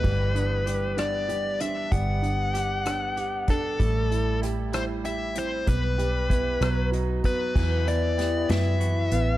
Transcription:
<<
  \new Staff \with { instrumentName = "Lead electric guitar" } { \time 6/8 \key g \major \tempo 4. = 64 b'4. d''4 e''8 | fis''2~ fis''8 a'8~ | a'4 r8 c''8 e''8 c''8 | b'2 r8 b'8~ |
b'8 d''4 e''4. | }
  \new Staff \with { instrumentName = "French horn section" } { \time 6/8 \key g \major r2. | r2. | r2. | r2. |
e'2. | }
  \new Staff \with { instrumentName = "Grand piano" } { \time 6/8 \key g \major g8 d'8 g8 d'8 g8 d'8 | g8 d'8 g'8 d'8 g'8 d'8 | a8 e'8 g'8 e'8 g'8 e'8 | b8 g'8 b8 b8 fis'8 b8 |
e8 b8 g'8 b8 e8 b8 | }
  \new Staff \with { instrumentName = "Clean electric guitar" } { \time 6/8 \key g \major e8 b8 g'8 b8 g'8 c'16 d'16 | b8 b8 g'8 b8 g'8 d'8 | g8 g8 e'8 g8 e'8 c'8 | g8 g8 e'8 fis8 dis'8 b8 |
r8 e'8 b8 e'8 fis'8 b8 | }
  \new Staff \with { instrumentName = "Fingered electric bass" } { \clef bass \time 6/8 \key g \major g,,2. | g,,2. | a,,2. | b,,4. b,,4 r8 |
e,4. fis,4 a,,8 | }
  \new DrumStaff \with { instrumentName = "Drums" } \drummode { \time 6/8 <cymc bd>8 hh8 hh8 <hh ss>8 hh8 hh8 | <hh bd>8 hh8 <hh ss>8 <hh ss>8 hh8 <hh bd>8 | <hh bd>8 hh8 <hh ss>8 <hh ss>8 hh8 hh8 | <hh bd>8 hh8 <hh bd ss>8 <hh ss>8 hh8 <hh bd>8 |
<cymc bd>8 hh8 <hh sn>8 <hh sn>8 hh8 hh8 | }
>>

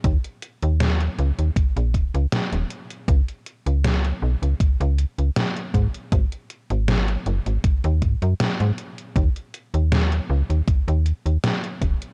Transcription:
<<
  \new Staff \with { instrumentName = "FM bass" } { \clef bass \time 4/4 \key ees \minor \tempo 4 = 79 ees,16 r8 ees,8 r16 des,16 ees,16 r16 bes,,16 ees,,16 des,16 r16 ees,,16 r8 | cis,16 r8 cis,8 r16 b,,16 cis,16 cis,16 cis,16 r16 cis,16 r8 aes,16 r16 | aes,,16 r8 aes,,8 r16 ges,,16 aes,,16 r16 ees,16 aes,16 ges,16 r16 aes,16 r8 | ees,16 r8 ees,8 r16 des,16 ees,16 ees,16 ees,16 r16 ees,16 r8 ees,,16 r16 | }
  \new DrumStaff \with { instrumentName = "Drums" } \drummode { \time 4/4 <hh bd>16 hh16 hh16 hh16 <hh sn>16 hh16 hh16 hh16 <hh bd>16 hh16 <hh bd>16 hh16 <hh sn>16 hh16 hh16 hh16 | <hh bd>16 hh16 hh16 hh16 <hh sn>16 hh8 hh16 <hh bd>16 hh16 hh16 hh16 <hh sn>16 hh16 <hh bd>16 hh16 | <hh bd>16 hh16 hh16 hh16 <hh sn>16 hh16 hh16 hh16 <hh bd>16 hh16 <hh bd>16 hh16 <hh sn>16 hh16 hh16 hh16 | <hh bd>16 hh16 hh16 hh16 <hh sn>16 hh8 hh16 <hh bd>16 hh16 hh16 hh16 <hh sn>16 hh16 <hh bd>16 hh16 | }
>>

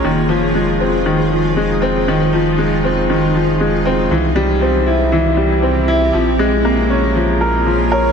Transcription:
<<
  \new Staff \with { instrumentName = "Soft synth lead" } { \time 4/4 \key f \minor \tempo 4 = 118 r1 | r1 | r1 | r2. r8 des''8 | }
  \new Staff \with { instrumentName = "Ambient pad" } { \time 4/4 \key f \minor <ees' f' aes'>1~ | <ees' f' aes'>1 | <c' e' g'>1 | <bes f' aes' des''>1 | }
  \new Staff \with { instrumentName = "Upright piano" } { \clef bass \time 4/4 \key f \minor ees8 f8 aes8 c'8 ees8 f8 aes8 c'8 | ees8 f8 aes8 c'8 ees8 f8 aes8 c'8 | e8 g8 c'8 e'8 e8 g8 c'8 e'8 | f8 aes8 bes8 des'8 f8 bes'8 f8 bes'8 | }
  \new Staff \with { instrumentName = "Analog synth bass" } { \clef bass \time 4/4 \key f \minor f,,1~ | f,,1 | c,1 | bes,,1 | }
>>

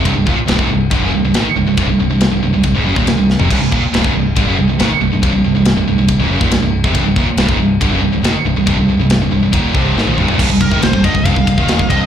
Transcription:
<<
  \new Staff \with { instrumentName = "Lead electric guitar" } { \time 4/4 \key c \minor \tempo 4 = 139 r1 | r1 | r1 | r1 |
r1 | r1 | r8 bes'8 c''8 ees''8 f''4. ees''8 | }
  \new Staff \with { instrumentName = "Distorted electric guitar" } { \clef bass \time 4/4 \key c \minor <c, g,>16 <c, g,>16 <ees, bes,>16 r16 <c, g,>16 <des, aes,>16 <c, g,>8 <g, d>16 <fis, des>16 <c, g,>16 <c, g,>16 <aes, ees>16 r16 <c, g,>16 <c, g,>16 | <c, g,>16 <c, g,>16 <c, g,>16 <c, g,>8 <c, g,>16 <c, g,>16 <c, g,>16 <c, g,>16 <des, aes,>16 <fis, des>16 <ees, bes,>16 <c, g,>16 <c, g,>8 <f, c>16 | <c, g,>16 <c, g,>16 <ees, bes,>16 r16 <c, g,>16 <des, aes,>16 <c, g,>8 <g, d>16 <fis, des>16 <c, g,>16 <c, g,>16 <aes, ees>16 r16 <c, g,>16 <c, g,>16 | <c, g,>16 <c, g,>16 <c, g,>16 <c, g,>8 <c, g,>16 <c, g,>16 <c, g,>16 <c, g,>16 <des, aes,>16 <fis, des>16 <ees, bes,>16 <c, g,>16 <c, g,>8 <f, c>16 |
<c, g,>16 <c, g,>16 <ees, bes,>16 r16 <c, g,>16 <des, aes,>16 <c, g,>8 <g, d>16 <fis, des>16 <c, g,>16 <c, g,>16 <aes, ees>16 r16 <c, g,>16 <c, g,>16 | <c, g,>16 <c, g,>16 <c, g,>16 <c, g,>8 <c, g,>16 <c, g,>16 <c, g,>16 <ees, bes, ees>8 <c, g, c>8 <aes, ees>16 <bes, f>16 <c, g,>16 <ees, bes,>16 | <c, g,>16 <c, g,>16 <c, g,>16 <aes, ees>16 <c, g,>16 <c, g,>16 <g, d>16 <c, g,>16 <c, g,>16 <c, g,>16 <c, g,>16 <ees, bes, ees>8 <c, g,>16 <c, g,>16 r16 | }
  \new Staff \with { instrumentName = "Distorted electric guitar" } { \clef bass \time 4/4 \key c \minor <c, g,>16 <c, g,>16 <ees, bes,>16 r16 <c, g,>16 <des, aes,>16 <c, g,>8 <g, d>16 <fis, des>16 <c, g,>16 <c, g,>16 <aes, ees>16 r16 <c, g,>16 <c, g,>16 | <c, g,>16 <c, g,>16 <c, g,>16 <c, g,>8 <c, g,>16 <c, g,>16 <c, g,>16 <c, g,>16 <des, aes,>16 <fis, des>16 <ees, bes,>16 <c, g,>16 <c, g,>8 <f, c>16 | <c, g,>16 <c, g,>16 <ees, bes,>16 r16 <c, g,>16 <des, aes,>16 <c, g,>8 <g, d>16 <fis, des>16 <c, g,>16 <c, g,>16 <aes, ees>16 r16 <c, g,>16 <c, g,>16 | <c, g,>16 <c, g,>16 <c, g,>16 <c, g,>8 <c, g,>16 <c, g,>16 <c, g,>16 <c, g,>16 <des, aes,>16 <fis, des>16 <ees, bes,>16 <c, g,>16 <c, g,>8 <f, c>16 |
<c, g,>16 <c, g,>16 <ees, bes,>16 r16 <c, g,>16 <des, aes,>16 <c, g,>8 <g, d>16 <fis, des>16 <c, g,>16 <c, g,>16 <aes, ees>16 r16 <c, g,>16 <c, g,>16 | <c, g,>16 <c, g,>16 <c, g,>16 <c, g,>8 <c, g,>16 <c, g,>16 <c, g,>16 <ees, bes, ees>8 <c, g, c>8 <aes, ees>16 <bes, f>16 <c, g,>16 <ees, bes,>16 | <c, g,>16 <c, g,>16 <c, g,>16 <aes, ees>16 <c, g,>16 <c, g,>16 <g, d>16 <c, g,>16 <c, g,>16 <c, g,>16 <c, g,>16 <ees, bes, ees>8 <c, g,>16 <c, g,>16 r16 | }
  \new Staff \with { instrumentName = "Picked electric bass" } { \clef bass \time 4/4 \key c \minor c,,16 c,,16 ees,,16 r16 c,,16 des,,16 c,,8 g,,16 fis,,16 c,,16 c,,16 aes,,16 r16 c,,16 c,,16 | c,,16 c,,16 c,,16 c,,8 c,,16 c,,16 c,,16 c,,16 des,,16 fis,,16 ees,,16 c,,16 c,,8 f,,16 | c,,16 c,,16 ees,,16 r16 c,,16 des,,16 c,,8 g,,16 fis,,16 c,,16 c,,16 aes,,16 r16 c,,16 c,,16 | c,,16 c,,16 c,,16 c,,8 c,,16 c,,16 c,,16 c,,16 des,,16 fis,,16 ees,,16 c,,16 c,,8 f,,16 |
c,,16 c,,16 ees,,16 r16 c,,16 des,,16 c,,8 g,,16 fis,,16 c,,16 c,,16 aes,,16 r16 c,,16 c,,16 | c,,16 c,,16 c,,16 c,,8 c,,16 c,,16 c,,16 ees,,8 c,,8 aes,,16 bes,,16 c,,16 ees,,16 | c,,16 c,,16 c,,16 aes,,16 c,,16 c,,16 g,,16 c,,16 c,,16 c,,16 c,,16 ees,,8 c,,16 c,,16 r16 | }
  \new DrumStaff \with { instrumentName = "Drums" } \drummode { \time 4/4 <bd rb>8 bd8 <rb sn>16 bd8. <bd rb>4 <rb sn>4 | <bd rb>4 <rb sn>4 <bd rb>8. bd16 <rb sn>8 sn16 tomfh16 | <cymc bd rb>8 bd8 <rb sn>16 bd8. <bd rb>4 <rb sn>4 | <bd rb>4 <rb sn>4 <bd rb>8. bd16 <rb sn>8. bd16 |
<bd rb>8 bd8 <rb sn>16 bd8. <bd rb>4 <rb sn>4 | <bd rb>4 <rb sn>4 <bd rb>8 bd8 sn16 tommh16 toml16 tomfh16 | <cymc bd>16 bd16 <bd cymr>16 bd16 <cymr sn>16 bd16 <bd cymr>16 bd16 <bd cymr>16 bd16 <bd cymr>16 bd16 <cymr sn>16 bd16 <bd cymr>8 | }
>>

